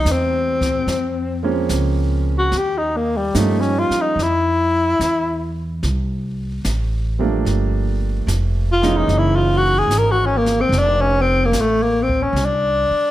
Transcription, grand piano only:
Already playing: E3 G3 A3 C4 G4
1.43 F3 G#3 A#3 C4 C#4
3.34 F3 G3 A#3 C#4 D#4
7.19 F3 G3 A3 A#3 D4
8.82 E3 G#3 A#3 C#4 D#4

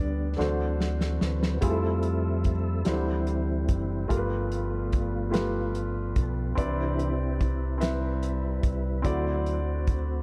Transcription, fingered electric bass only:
Already playing: D2
0.39 D2
1.22 D2
1.62 F2
2.87 D2
3.69 F#1
4.10 G1
6.16 B1
6.58 C2
8.64 C2
9.05 D2

